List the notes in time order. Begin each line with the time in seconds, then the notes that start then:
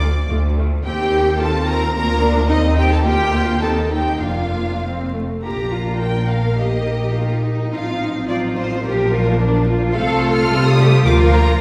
Already playing: D2 D5 D6
0.03 A3 F4
0.29 D2 A3 F4
0.58 A3 F4
0.84 D#2 C4 G4 G5
1.39 C4 F4 A4 A5
1.67 A#4 A#5
1.94 D2 A#3 F4 A#4 A#5
2.21 D4
2.48 D#2 C4 D#4 D#5
2.76 G4 G5
2.90 A4 A5
3.04 D2 A#3 F4 G4 G5
3.33 F4
3.61 D#2 C4 D#4 A4 A5
3.91 G4 G5
4.20 F1 F2 A#3 D4 F4 F5
4.83 C4
5.13 A3
5.43 A#1 A#3 D4 F4 G4 A#5
5.73 F4
6.00 A#4 G5
6.29 F5
6.57 D#4 G4 D#5
7.14 F4
7.44 D#4
7.72 A1 F3 C4 F4 F5
8.01 D#4
8.28 F4 D5
8.57 C5
8.84 A#1 A#3 D4 G4 A#4
9.12 F4
9.40 D4
9.68 F4
9.95 C2 A3 C4 F4 A4 F5
10.32 F6
10.50 C3 G3 A3 A4
10.68 D#6
10.79 G4
11.06 D2 F3 A#3 F4 A#4 D6
11.33 A#5